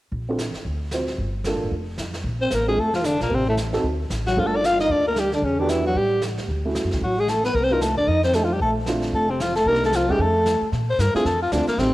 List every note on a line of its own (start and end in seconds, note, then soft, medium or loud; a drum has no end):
0.12 0.51 A#1 medium
0.12 brush sweep soft
0.12 kick soft
0.29 0.38 C4 medium
0.29 0.38 D4 soft
0.29 0.38 F4 soft
0.29 0.38 A4 medium
0.38 snare soft
0.38 hi-hat pedal soft
0.54 muted upright bass stroke soft
0.54 snare soft
0.64 1.16 D2 medium
0.64 brush sweep soft
0.64 kick soft
0.91 1.07 C4 soft
0.91 1.07 F4 soft
0.91 1.07 F#4 soft
0.91 1.07 C5 medium
0.91 snare soft
0.91 hi-hat pedal soft
1.07 snare soft
1.18 1.51 G1 medium
1.18 brush sweep soft
1.18 kick soft
1.44 1.72 A#3 soft
1.44 1.72 D4 soft
1.44 1.72 F4 soft
1.44 1.73 A4 medium
1.44 snare soft
1.44 hi-hat pedal soft
1.54 1.62 A1 medium
1.63 1.71 F#1 medium
1.72 1.96 F1 medium
1.72 brush sweep soft
1.72 kick soft
1.98 2.23 F2 medium
1.98 snare soft
1.98 hi-hat pedal medium
2.14 snare soft
2.24 2.49 A#1 medium
2.24 brush sweep soft
2.24 kick soft
2.41 2.53 C4 medium
2.41 2.56 C5 medium
2.51 2.76 A1 medium
2.51 2.66 A#3 medium
2.51 2.67 A#4 medium
2.51 snare medium
2.51 hi-hat pedal medium
2.67 2.80 G#3 medium
2.67 2.76 C4 soft
2.67 2.77 D4 soft
2.67 2.77 F4 soft
2.67 2.81 G#4 medium
2.67 2.77 A4 soft
2.77 3.17 F1 medium
2.77 2.92 A3 medium
2.77 2.95 A4 medium
2.77 brush sweep soft
2.77 kick soft
2.93 3.05 F3 medium
2.93 3.07 F4 medium
2.93 snare soft
3.04 3.20 D3 medium
3.04 3.21 D4 medium
3.04 snare medium
3.04 hi-hat pedal medium
3.20 3.30 A#1 medium
3.20 3.33 A#2 medium
3.20 3.36 A#3 medium
3.20 snare soft
3.30 3.81 A1 medium
3.30 3.47 C3 medium
3.30 brush sweep soft
3.30 kick soft
3.34 3.48 C4 medium
3.47 3.57 A2 medium
3.47 3.55 A3 medium
3.57 snare soft
3.57 hi-hat pedal medium
3.73 3.82 C4 medium
3.73 3.83 D#4 medium
3.73 3.83 F#4 medium
3.73 3.83 A4 medium
3.73 snare soft
3.84 4.08 D2 medium
3.84 brush sweep soft
3.84 kick soft
4.10 4.35 A1 medium
4.10 snare soft
4.10 hi-hat pedal medium
4.27 4.40 F#3 medium
4.27 4.40 F#4 medium
4.27 snare soft
4.36 4.87 G1 medium
4.36 4.48 F3 medium
4.36 5.10 A#3 medium
4.36 5.10 D4 soft
4.36 5.10 F4 medium
4.36 4.48 F4 medium
4.36 5.10 A4 medium
4.36 brush sweep soft
4.36 kick soft
4.46 4.57 A3 soft
4.46 4.57 A4 medium
4.56 4.65 D4 medium
4.56 4.67 D5 medium
4.64 4.79 F4 medium
4.64 4.80 F5 medium
4.64 snare medium
4.64 hi-hat pedal soft
4.79 4.92 D#4 medium
4.79 4.93 D#5 medium
4.79 snare soft
4.90 5.40 D2 medium
4.90 5.06 D4 medium
4.90 5.06 D5 medium
4.90 brush sweep soft
4.90 kick soft
5.07 5.19 A#3 medium
5.07 5.21 A#4 medium
5.16 5.32 G3 medium
5.16 5.33 G4 medium
5.16 snare soft
5.16 hi-hat pedal soft
5.32 5.45 D3 medium
5.32 5.46 D4 medium
5.32 snare soft
5.42 5.92 E2 medium
5.42 5.61 C#3 medium
5.42 5.61 C#4 medium
5.42 brush sweep soft
5.42 kick soft
5.59 5.72 D3 medium
5.59 5.94 B3 medium
5.59 5.71 D4 medium
5.59 5.94 D4 medium
5.59 5.94 F#4 medium
5.59 5.94 G4 medium
5.69 5.84 E3 medium
5.69 5.85 E4 medium
5.69 snare soft
5.69 hi-hat pedal medium
5.85 5.98 F#3 medium
5.85 5.99 F#4 medium
5.95 6.35 A1 medium
5.95 6.22 G3 medium
5.95 6.23 G4 medium
5.95 brush sweep soft
5.95 kick soft
6.22 snare medium
6.22 hi-hat pedal soft
6.38 6.48 A2 medium
6.38 snare soft
6.48 6.81 D2 medium
6.48 brush sweep soft
6.48 kick soft
6.65 7.00 A3 medium
6.65 7.00 C#4 soft
6.65 7.00 E4 soft
6.65 7.00 F#4 medium
6.75 snare medium
6.75 hi-hat pedal medium
6.84 6.92 F#2 medium
6.91 7.01 C#2 medium
6.91 snare soft
7.01 7.52 A1 medium
7.01 7.20 F#3 medium
7.01 7.21 F#4 medium
7.01 brush sweep soft
7.01 kick soft
7.18 7.30 G#3 medium
7.18 7.31 G#4 medium
7.28 7.43 A3 medium
7.28 7.44 A4 medium
7.28 snare medium
7.28 hi-hat pedal soft
7.43 7.56 B3 medium
7.43 7.57 B4 medium
7.43 snare soft
7.54 7.94 C2 medium
7.54 7.65 A#3 medium
7.54 7.65 A#4 medium
7.54 brush sweep soft
7.54 kick soft
7.63 7.74 C4 medium
7.63 7.74 C5 medium
7.71 7.80 A#3 medium
7.71 7.82 A#3 medium
7.71 7.80 D4 medium
7.71 7.80 D#4 medium
7.71 7.81 F4 medium
7.71 7.83 A#4 medium
7.81 7.97 A3 medium
7.81 7.97 A4 medium
7.81 snare medium
7.81 hi-hat pedal medium
7.96 8.06 D#2 medium
7.96 8.10 D4 medium
7.96 8.09 D5 medium
8.07 8.58 F2 medium
8.07 8.24 D#4 medium
8.07 8.23 D#5 medium
8.07 brush sweep soft
8.07 kick soft
8.23 8.36 C4 medium
8.23 8.36 C5 medium
8.23 snare soft
8.33 8.48 A3 soft
8.33 8.46 A3 medium
8.33 8.49 D4 soft
8.33 8.49 D#4 soft
8.33 8.45 A4 medium
8.33 8.49 A4 soft
8.33 snare medium
8.33 hi-hat pedal soft
8.44 8.54 F3 soft
8.44 8.54 F4 medium
8.53 8.61 G3 medium
8.53 8.61 G4 medium
8.60 9.11 A#1 medium
8.60 8.76 A3 medium
8.60 8.71 A4 medium
8.60 brush sweep soft
8.60 kick soft
8.86 9.27 A3 medium
8.86 9.27 C4 soft
8.86 9.27 D4 soft
8.86 9.27 F4 medium
8.86 snare medium
8.86 hi-hat pedal soft
9.02 snare soft
9.13 9.63 F1 medium
9.13 9.32 A3 medium
9.13 9.32 A4 medium
9.13 brush sweep soft
9.13 kick soft
9.30 9.43 C3 soft
9.30 9.42 C4 medium
9.40 9.55 F3 medium
9.40 9.55 F4 medium
9.40 snare medium
9.40 hi-hat pedal soft
9.55 9.68 A3 medium
9.55 9.69 A4 medium
9.55 snare soft
9.66 10.05 C2 medium
9.66 9.81 A#3 medium
9.66 9.81 A#3 soft
9.66 9.81 D4 soft
9.66 9.81 D#4 soft
9.66 9.81 G4 medium
9.66 9.83 A#4 medium
9.66 brush sweep soft
9.66 kick soft
9.74 snare soft
9.82 9.94 A3 medium
9.82 9.97 A4 medium
9.82 snare soft
9.92 10.11 F3 medium
9.92 10.12 F4 medium
9.92 snare medium
9.92 hi-hat pedal soft
10.09 10.18 D#2 medium
10.09 10.21 G3 medium
10.09 10.19 A3 medium
10.09 10.19 C#4 medium
10.09 10.19 D#4 medium
10.09 10.22 G4 medium
10.09 10.19 G#4 medium
10.18 10.58 F2 medium
10.18 10.67 A3 medium
10.18 10.68 A4 medium
10.18 brush sweep soft
10.18 kick soft
10.46 snare medium
10.46 hi-hat pedal medium
10.61 muted upright bass stroke soft
10.72 10.98 A#2 medium
10.72 brush sweep soft
10.72 kick soft
10.72 snare soft
10.90 11.02 C5 medium
10.98 11.13 G2 medium
10.98 11.15 A#4 medium
10.98 kick soft
10.98 snare medium
10.98 hi-hat pedal medium
11.14 11.24 A3 medium
11.14 11.24 C4 medium
11.14 11.25 D4 medium
11.14 11.25 F4 medium
11.14 11.27 G#4 medium
11.14 muted upright bass stroke soft
11.14 snare soft
11.25 11.51 F2 medium
11.25 11.41 A4 medium
11.25 brush sweep soft
11.25 kick soft
11.25 snare soft
11.42 11.54 F4 medium
11.52 11.67 D2 medium
11.52 11.67 A3 medium
11.52 11.67 C4 soft
11.52 11.67 D4 medium
11.52 11.67 D4 soft
11.52 11.67 F4 medium
11.52 kick soft
11.52 snare medium
11.52 hi-hat pedal soft
11.67 11.80 A#3 medium
11.67 muted upright bass stroke soft
11.67 snare soft
11.78 11.94 A1 medium
11.78 11.93 A3 medium
11.78 11.93 C4 medium
11.78 11.93 D#4 soft
11.78 11.93 G4 medium
11.78 brush sweep soft
11.78 kick soft
11.78 snare soft